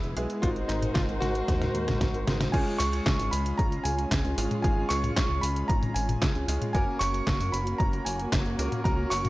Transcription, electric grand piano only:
0.00 0.12 E4 medium
0.42 0.48 F4 loud
0.68 0.96 D#4 medium
0.94 1.00 F4 loud
1.20 2.23 F#4 loud
2.52 2.80 G#5 loud
2.78 3.28 C#6 loud
3.31 3.56 B5 loud
3.58 3.83 A#5 loud
3.84 4.33 G#5 medium
4.62 4.88 G#5 loud
4.89 5.44 C#6 loud
5.41 5.69 B5 loud
5.68 5.93 A#5 loud
5.94 6.44 G#5 loud
6.73 7.01 G#5 loud
6.99 7.54 C#6 loud
7.52 7.77 B5 loud
7.78 8.04 A#5 loud
8.05 8.54 G#5 medium
8.84 9.09 A#5 loud
9.10 9.29 C#6 loud

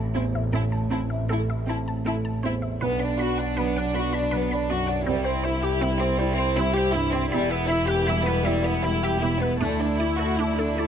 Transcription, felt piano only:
0.00 0.49 A1 medium
0.00 0.56 A3 medium
0.00 0.56 C4 medium
0.14 0.76 E2 medium
0.53 2.78 A1 medium
0.90 1.52 C4 soft
1.29 1.90 A3 soft
1.66 2.28 C4 soft
2.05 2.66 A3 soft
2.43 2.82 E2 soft
2.82 5.04 B1 medium
3.19 3.81 B3 soft
3.58 4.18 F#3 soft
3.94 4.55 B3 medium
4.33 4.93 F#3 soft
4.71 5.08 F#2 medium
5.08 7.28 C2 medium
5.45 6.05 E4 medium
5.83 6.43 G3 medium
6.20 6.80 E4 medium
6.57 7.17 G3 medium
6.95 7.32 G2 medium
7.33 9.58 E2 medium
7.71 8.31 E4 medium
8.08 8.69 G3 medium
8.46 9.07 E4 medium
8.85 9.46 G3 medium
9.23 9.62 B2 medium
9.61 10.87 D2 medium
10.00 10.63 E4 soft
10.40 10.87 A3 soft
10.79 10.87 E4 medium

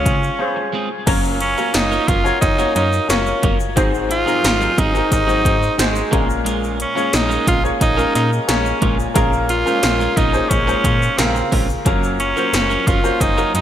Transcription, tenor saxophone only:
0.00 0.69 C#4 medium
1.41 1.76 C#4 medium
1.74 2.10 D#4 loud
2.08 2.41 F4 loud
2.41 2.73 D#4 loud
2.75 3.07 D#4 medium
3.10 3.57 C#4 medium
4.11 4.81 F4 loud
4.79 5.12 D#4 loud
5.13 5.76 D#4 loud
5.81 6.27 G#3 medium
6.82 7.16 C#4 medium
7.15 7.48 D#4 loud
7.48 7.63 F4 loud
7.82 8.13 D#4 loud
8.15 8.30 D#4 medium
8.49 8.96 C#4 medium
9.50 10.19 F4 loud
10.17 10.51 D#4 loud
10.49 11.19 C#4 loud
11.18 11.69 C4 medium
12.20 12.89 C#4 loud
12.87 13.22 F4 loud
13.21 13.54 D#4 loud
13.55 13.61 D#4 medium

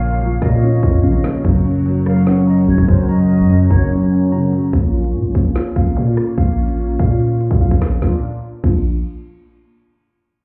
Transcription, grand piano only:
0.00 1.47 A#2 loud
0.00 0.42 C#3 medium
0.00 0.21 F3 medium
0.00 0.42 A#3 medium
0.00 0.63 C#4 loud
0.21 1.23 F3 medium
0.42 1.45 A#3 medium
0.63 1.45 C#4 loud
1.03 1.45 C#3 medium
1.24 1.45 F3 medium
1.45 2.47 F#2 loud
1.86 2.87 F#3 medium
2.06 3.09 A#3 medium
2.27 3.30 C#4 loud
2.68 3.71 C#3 medium
2.88 3.49 F#3 medium
3.09 4.12 F#2 medium
3.50 4.51 F#3 medium
3.71 4.73 A#3 medium
3.91 4.73 C#4 medium
4.32 4.73 C#3 medium
4.53 4.73 F#3 medium

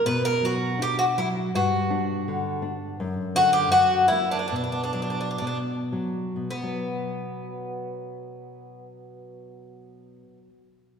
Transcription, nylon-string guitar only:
0.06 1.50 B2 medium
0.42 0.78 F#3 medium
0.79 1.15 D4 medium
1.18 1.53 F#3 medium
1.55 2.96 G2 medium
1.90 2.26 D4 medium
2.28 2.63 D3 medium
2.62 2.97 D4 medium
3.00 3.69 F#2 medium
3.35 3.71 D3 medium
3.71 4.48 F#2 medium
4.11 4.50 A#3 medium
4.52 5.40 B2 medium
4.94 5.41 F#3 medium
5.41 5.92 B2 soft
5.92 6.48 F#3 soft
6.36 10.22 B2 soft
6.63 10.49 F#3 medium

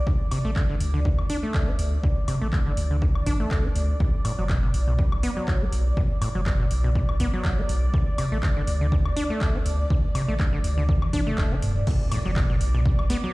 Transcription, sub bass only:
0.07 0.17 D2 loud
0.45 0.76 A1 medium
0.81 1.13 D2 medium
1.19 1.27 D2 loud
1.54 1.65 D2 loud
1.79 1.98 D2 medium
2.03 2.14 D2 loud
2.42 2.73 A1 medium
2.77 3.10 D2 medium
3.15 3.47 A1 medium
3.51 3.70 D2 loud
3.76 3.95 D2 loud
4.00 4.10 B1 medium
4.39 4.70 F#1 medium
4.74 5.07 B1 medium
5.12 5.21 B1 loud
5.48 5.58 B1 loud
5.73 5.92 B1 medium
5.97 6.07 B1 loud
6.35 6.67 F#1 medium
6.71 7.04 B1 medium
7.09 7.17 B1 loud
7.45 7.55 B1 loud
7.69 7.88 B1 loud
7.94 8.04 D2 medium
8.32 8.63 A1 medium
8.67 9.00 D2 loud
9.06 9.14 D2 loud
9.41 9.51 D2 loud
9.66 9.85 D2 medium
9.90 10.01 D2 loud
10.29 10.60 A1 medium
10.64 10.97 D2 medium
11.02 11.11 D2 loud
11.38 11.57 D1 loud
11.63 11.82 D1 medium
11.87 11.97 B1 loud
12.25 12.57 F#1 medium
12.61 12.94 B1 medium
12.99 13.07 B1 loud

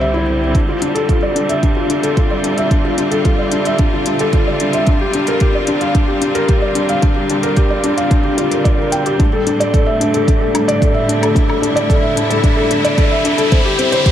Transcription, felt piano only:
0.00 0.28 C4 medium
0.00 0.57 G4 medium
0.00 0.57 C5 medium
0.00 0.57 E5 medium
0.00 0.57 G5 medium
0.14 0.22 E4 medium
0.28 0.40 C4 medium
0.42 0.55 C4 medium
0.55 0.63 D4 medium
0.69 0.81 F4 medium
0.82 0.95 D4 medium
0.95 1.08 A4 medium
1.09 1.17 F4 medium
1.23 1.35 D5 medium
1.36 1.49 D4 medium
1.49 1.62 E5 medium
1.63 1.71 D4 medium
1.77 1.89 F4 medium
1.90 2.03 D4 medium
2.03 2.16 A4 medium
2.17 2.25 F4 medium
2.31 2.44 D5 medium
2.44 2.57 D4 medium
2.58 2.71 E5 medium
2.71 2.79 D4 medium
2.85 2.98 F4 medium
2.98 3.11 D4 medium
3.11 3.24 A4 medium
3.25 3.33 F4 medium
3.39 3.52 D5 medium
3.52 3.65 D4 medium
3.66 3.79 E5 medium
3.79 3.87 D4 medium
3.93 4.06 F4 medium
4.07 4.20 D4 medium
4.20 4.33 A4 medium
4.34 4.41 F4 medium
4.47 4.60 D5 medium
4.61 4.74 D4 medium
4.74 4.87 E5 medium
4.88 4.95 D4 medium
5.01 5.14 G4 medium
5.15 5.27 D4 medium
5.28 5.41 A#4 medium
5.41 5.49 G4 medium
5.55 5.68 D5 medium
5.68 5.81 D4 medium
5.81 5.94 F5 medium
5.95 6.03 D4 medium
6.08 6.21 G4 medium
6.21 6.35 D4 medium
6.35 6.48 A#4 loud
6.48 6.57 G4 medium
6.62 6.75 D5 medium
6.75 6.89 D4 medium
6.89 7.02 F5 medium
7.02 7.10 D4 medium
7.16 7.29 G4 medium
7.30 7.43 D4 medium
7.43 7.56 A#4 medium
7.57 7.65 G4 medium
7.70 7.84 D5 medium
7.84 7.97 D4 medium
7.97 8.11 F5 medium
8.10 8.19 D4 medium
8.24 8.38 G4 medium
8.37 8.51 F4 medium
8.51 8.65 A#4 medium
8.64 8.78 D5 medium
8.78 8.86 A#4 medium
8.92 9.05 G5 medium
9.06 9.19 G4 medium
9.19 9.27 D4 medium
9.33 9.46 A4 medium
9.47 9.60 D4 medium
9.60 9.73 D5 medium
9.73 9.81 A4 medium
9.86 10.00 E5 medium
10.00 10.13 D4 medium
10.14 10.22 A4 medium
10.28 10.36 D4 medium
10.41 10.54 A4 medium
10.54 10.67 D4 medium
10.68 10.81 D5 medium
10.81 10.89 A4 medium
10.94 11.08 E5 medium
11.09 11.22 D4 medium
11.22 11.30 A4 medium
11.35 11.43 D4 medium
11.48 11.62 A4 medium
11.62 11.75 D4 medium
11.76 11.89 D5 medium
11.89 11.97 A4 medium
12.03 12.16 E5 medium
12.16 12.29 D4 medium
12.30 12.38 A4 medium
12.43 12.51 D4 medium
12.57 12.70 A4 medium
12.71 12.84 D4 medium
12.84 12.97 D5 loud
12.97 13.06 A4 medium
13.11 13.24 E5 medium
13.25 13.38 D4 medium
13.38 13.46 A4 medium
13.51 13.60 C4 medium
13.65 13.78 G4 medium
13.79 13.92 C4 medium
13.92 14.05 C5 medium
14.06 14.12 G4 medium

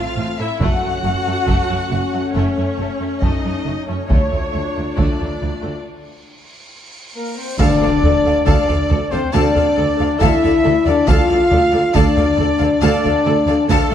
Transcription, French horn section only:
0.00 0.44 A3 medium
0.00 0.44 C4 medium
0.61 4.06 A3 medium
0.61 4.06 C#4 medium
4.10 5.80 A3 medium
4.10 5.81 F4 soft
7.15 7.36 A#3 medium
7.38 7.60 C4 medium
7.59 8.44 D4 loud
8.45 9.10 D4 medium
9.11 9.33 C4 medium
9.34 10.19 D4 medium
10.20 10.86 E4 loud
10.88 11.09 D4 medium
11.09 11.95 F4 loud
11.95 12.81 D4 medium
12.83 13.68 D4 medium
13.69 13.95 A3 medium

